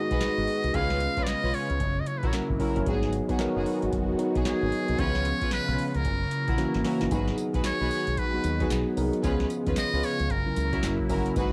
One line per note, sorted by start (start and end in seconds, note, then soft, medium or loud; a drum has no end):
0.00 0.72 D#3 medium
0.00 0.21 G#3 loud
0.00 1.77 G#3 medium
0.00 1.77 B3 medium
0.00 0.21 D#4 medium
0.00 0.22 F#4 medium
0.00 0.72 F#4 medium
0.00 0.15 G#4 medium
0.00 0.22 B4 loud
0.00 0.76 D#5 loud
0.10 0.19 B1 medium
0.10 0.28 F#4 medium
0.10 0.28 G#4 medium
0.10 0.28 B4 medium
0.10 kick loud
0.10 closed hi-hat soft
0.21 0.59 G#3 medium
0.21 0.59 D#4 medium
0.21 0.59 F#4 medium
0.21 0.59 B4 medium
0.21 snare loud
0.21 clap medium
0.21 closed hi-hat medium
0.38 0.45 G#1 medium
0.47 open hi-hat medium
0.64 0.72 C2 medium
0.64 closed hi-hat medium
0.74 1.07 C#2 loud
0.74 2.84 C#3 medium
0.74 1.47 G#3 medium
0.74 0.95 C#4 loud
0.74 1.47 C#4 medium
0.74 0.95 F4 medium
0.74 1.79 F4 medium
0.74 1.48 F4 medium
0.74 0.95 B4 loud
0.74 1.48 B4 medium
0.74 1.25 F5 loud
0.74 kick loud
0.74 closed hi-hat medium
0.90 snare medium
1.00 closed hi-hat medium
1.17 1.34 C#4 medium
1.17 1.34 F4 medium
1.17 1.34 B4 medium
1.17 kick loud
1.17 closed hi-hat medium
1.23 1.30 D5 medium
1.23 snare loud
1.23 closed hi-hat medium
1.27 1.56 D#5 loud
1.27 clap loud
1.43 1.51 B1 medium
1.43 1.61 C#4 medium
1.43 1.61 F4 medium
1.43 1.61 B4 medium
1.54 2.02 C#5 medium
1.54 open hi-hat medium
1.70 1.78 C#2 loud
1.70 closed hi-hat soft
1.80 2.01 F#1 loud
1.80 2.85 F#3 medium
1.80 2.85 A#3 medium
1.80 2.85 E4 medium
1.80 kick loud
1.80 closed hi-hat medium
2.00 2.09 D#5 medium
2.07 2.20 C#5 medium
2.07 closed hi-hat medium
2.18 2.29 B4 medium
2.23 2.31 A#1 medium
2.23 2.40 E4 medium
2.23 2.40 F#4 medium
2.23 2.41 A#4 medium
2.23 kick loud
2.23 closed hi-hat soft
2.27 2.34 C#5 medium
2.33 2.53 F#3 medium
2.33 2.53 C#4 medium
2.33 2.53 E4 medium
2.33 2.54 A#4 medium
2.33 snare loud
2.33 clap medium
2.33 closed hi-hat medium
2.50 2.58 G#1 medium
2.50 kick loud
2.59 2.71 F#3 medium
2.59 2.71 C#4 medium
2.59 2.81 E4 medium
2.59 2.71 E4 medium
2.59 2.81 F#4 medium
2.59 2.81 A#4 medium
2.59 2.71 A#4 loud
2.59 kick loud
2.59 open hi-hat medium
2.76 2.84 G1 medium
2.76 2.83 F#3 medium
2.76 2.83 C#4 medium
2.76 2.83 E4 medium
2.76 2.83 A#4 loud
2.76 closed hi-hat medium
2.86 3.19 G#1 loud
2.86 4.97 D#3 medium
2.86 3.13 F#3 loud
2.86 6.02 G#3 medium
2.86 3.07 B3 loud
2.86 3.13 B3 medium
2.86 6.02 B3 medium
2.86 3.13 D#4 medium
2.86 4.97 F#4 medium
2.86 3.07 F#4 medium
2.86 3.07 G#4 loud
2.86 3.14 G#4 loud
2.86 kick loud
2.86 closed hi-hat medium
3.03 snare medium
3.13 closed hi-hat medium
3.29 3.36 F#3 medium
3.29 3.46 B3 medium
3.29 3.36 B3 medium
3.29 3.36 D#4 medium
3.29 3.47 F#4 medium
3.29 3.47 G#4 medium
3.29 3.37 B4 medium
3.29 kick loud
3.29 closed hi-hat medium
3.39 3.93 F#3 loud
3.39 3.93 B3 loud
3.39 3.93 D#4 medium
3.39 3.93 A#4 loud
3.39 snare loud
3.39 clap loud
3.39 closed hi-hat medium
3.56 3.64 F#1 medium
3.56 3.73 B3 medium
3.56 3.73 F#4 medium
3.56 3.73 G#4 medium
3.66 open hi-hat medium
3.82 3.90 G#1 medium
3.82 closed hi-hat soft
3.92 4.13 F#1 medium
3.92 kick loud
3.92 closed hi-hat medium
4.18 4.39 F#3 loud
4.18 4.39 B3 medium
4.18 4.39 D#4 medium
4.18 4.39 F#4 loud
4.18 closed hi-hat medium
4.35 4.43 B1 medium
4.35 4.53 B3 medium
4.35 4.53 F#4 medium
4.35 4.53 G#4 medium
4.35 kick loud
4.35 closed hi-hat soft
4.45 4.83 F#3 medium
4.45 4.84 B3 medium
4.45 4.84 D#4 medium
4.45 4.84 F#4 loud
4.45 5.01 G#4 loud
4.45 snare loud
4.45 clap medium
4.45 closed hi-hat medium
4.63 4.70 G#1 medium
4.72 open hi-hat medium
4.88 4.97 C2 medium
4.88 closed hi-hat medium
4.98 5.31 C#2 loud
4.98 7.09 C#3 medium
4.98 5.06 E3 medium
4.98 5.72 B3 medium
4.98 5.19 C#4 loud
4.98 5.72 C#4 medium
4.98 6.04 F4 medium
4.98 5.19 F4 medium
4.98 5.72 G#4 medium
4.98 5.20 B4 loud
4.98 5.52 C#5 loud
4.98 kick loud
4.98 closed hi-hat medium
5.04 5.75 F3 medium
5.15 snare medium
5.25 closed hi-hat medium
5.41 5.59 C#4 medium
5.41 5.59 F4 medium
5.41 5.59 B4 medium
5.41 kick loud
5.41 closed hi-hat medium
5.51 5.87 B4 loud
5.51 snare loud
5.51 clap medium
5.51 closed hi-hat medium
5.68 5.76 B1 loud
5.68 5.85 C#4 medium
5.68 5.85 F4 medium
5.68 5.85 B4 medium
5.78 open hi-hat medium
5.87 5.97 B4 medium
5.94 6.03 C#2 medium
5.94 6.85 A#4 medium
5.94 closed hi-hat soft
6.05 6.25 F#1 loud
6.05 7.10 F#3 medium
6.05 7.10 A#3 medium
6.05 7.10 E4 medium
6.05 kick loud
6.05 closed hi-hat medium
6.31 closed hi-hat medium
6.48 6.56 A#1 loud
6.48 6.65 E4 medium
6.48 6.65 F#4 medium
6.48 6.65 A#4 medium
6.48 kick loud
6.48 closed hi-hat soft
6.57 6.78 E3 loud
6.57 6.78 A#3 loud
6.57 6.78 C#4 medium
6.57 6.78 F#4 loud
6.57 snare medium
6.57 closed hi-hat medium
6.74 6.83 G#1 medium
6.74 snare medium
6.84 6.95 E3 medium
6.84 6.96 A#3 medium
6.84 6.96 C#4 medium
6.84 7.05 E4 medium
6.84 7.05 F#4 medium
6.84 6.96 F#4 medium
6.84 7.06 A#4 medium
6.84 snare medium
6.84 open hi-hat medium
7.00 7.09 G1 medium
7.00 7.07 E3 medium
7.00 7.08 A#3 medium
7.00 7.08 C#4 medium
7.00 7.08 D#4 loud
7.00 snare medium
7.00 closed hi-hat medium
7.11 7.32 G#1 loud
7.11 9.21 D#3 medium
7.11 7.84 F#3 medium
7.11 10.27 G#3 medium
7.11 7.84 B3 medium
7.11 10.27 B3 medium
7.11 7.85 D#4 medium
7.11 7.32 F#4 medium
7.11 9.21 F#4 medium
7.11 7.32 G#4 medium
7.11 7.85 G#4 medium
7.11 7.32 B4 loud
7.11 kick loud
7.11 closed hi-hat medium
7.11 tambourine medium
7.27 snare medium
7.38 closed hi-hat medium
7.38 tambourine medium
7.54 7.62 B1 loud
7.54 7.71 F#4 medium
7.54 7.71 G#4 medium
7.54 7.71 B4 medium
7.54 kick loud
7.54 closed hi-hat medium
7.64 8.20 C#5 loud
7.64 muted fingered electric bass stroke soft
7.64 snare loud
7.64 clap medium
7.64 closed hi-hat medium
7.64 tambourine loud
7.80 7.89 B1 loud
7.80 7.98 F#4 medium
7.80 7.98 G#4 medium
7.80 7.98 B4 medium
7.91 open hi-hat medium
7.91 tambourine medium
8.07 8.15 B1 medium
8.07 closed hi-hat soft
8.17 8.71 B4 loud
8.17 kick loud
8.17 closed hi-hat medium
8.33 8.49 F#3 medium
8.33 8.50 B3 medium
8.33 8.50 D#4 medium
8.33 8.50 F#4 medium
8.33 muted fingered electric bass stroke soft
8.44 8.64 D#2 loud
8.44 closed hi-hat medium
8.44 tambourine medium
8.60 8.87 F#3 medium
8.60 8.87 B3 medium
8.60 8.87 D#4 medium
8.60 8.77 F#4 medium
8.60 8.78 G#4 medium
8.60 8.88 G#4 medium
8.60 8.78 B4 medium
8.60 kick loud
8.60 closed hi-hat soft
8.71 8.83 B1 loud
8.71 snare loud
8.71 clap loud
8.71 closed hi-hat medium
8.71 tambourine loud
8.97 9.10 C2 loud
8.97 9.17 F#3 medium
8.97 9.17 B3 medium
8.97 9.17 D#4 medium
8.97 9.17 A#4 loud
8.97 open hi-hat medium
8.97 tambourine medium
9.13 closed hi-hat medium
9.23 9.44 C#2 loud
9.23 11.34 C#3 medium
9.23 9.97 F3 medium
9.23 9.97 B3 medium
9.23 9.44 C#4 loud
9.23 9.97 C#4 medium
9.23 10.29 F4 medium
9.23 9.44 F4 medium
9.23 9.97 G#4 loud
9.23 9.44 B4 loud
9.23 kick loud
9.23 closed hi-hat medium
9.23 tambourine medium
9.40 snare medium
9.50 closed hi-hat medium
9.50 tambourine medium
9.66 9.74 D#2 loud
9.66 9.84 C#4 medium
9.66 9.84 F4 medium
9.66 9.84 B4 medium
9.66 kick medium
9.66 closed hi-hat medium
9.76 10.06 D#5 loud
9.76 muted fingered electric bass stroke soft
9.76 snare loud
9.76 clap medium
9.76 closed hi-hat medium
9.76 tambourine loud
9.93 10.01 C#2 medium
9.93 10.10 C#4 medium
9.93 10.10 F4 medium
9.93 10.10 B4 medium
10.03 10.33 C#5 loud
10.03 open hi-hat medium
10.03 tambourine medium
10.19 10.28 C#2 loud
10.19 closed hi-hat soft
10.30 10.42 F#1 loud
10.30 11.35 F#3 medium
10.30 11.35 A#3 medium
10.30 11.35 E4 medium
10.30 11.10 A#4 medium
10.30 kick loud
10.30 closed hi-hat medium
10.46 10.62 F#3 medium
10.46 10.62 C#4 medium
10.46 10.62 E4 medium
10.46 10.62 A#4 medium
10.46 muted fingered electric bass stroke soft
10.56 10.77 C#2 loud
10.56 closed hi-hat medium
10.56 tambourine medium
10.72 10.99 F#3 medium
10.72 10.99 C#4 medium
10.72 10.90 E4 medium
10.72 11.00 E4 medium
10.72 10.90 F#4 medium
10.72 11.00 F#4 medium
10.72 10.90 A#4 medium
10.72 kick loud
10.72 closed hi-hat soft
10.83 10.96 F#1 loud
10.83 snare loud
10.83 clap loud
10.83 closed hi-hat medium
10.83 tambourine loud
10.99 kick loud
11.09 11.22 G1 loud
11.09 11.29 F#3 medium
11.09 11.29 C#4 medium
11.09 11.30 E4 medium
11.09 11.30 F#4 medium
11.09 11.30 A#4 medium
11.09 kick medium
11.09 open hi-hat medium
11.09 tambourine medium
11.26 closed hi-hat medium
11.36 11.53 G#1 loud
11.36 11.53 D#3 medium
11.36 11.53 G#3 loud
11.36 11.53 G#3 medium
11.36 11.53 B3 medium
11.36 11.53 D#4 medium
11.36 11.53 F#4 loud
11.36 11.53 F#4 medium
11.36 11.53 G#4 medium
11.36 11.53 B4 loud
11.36 kick loud
11.36 closed hi-hat medium
11.36 tambourine medium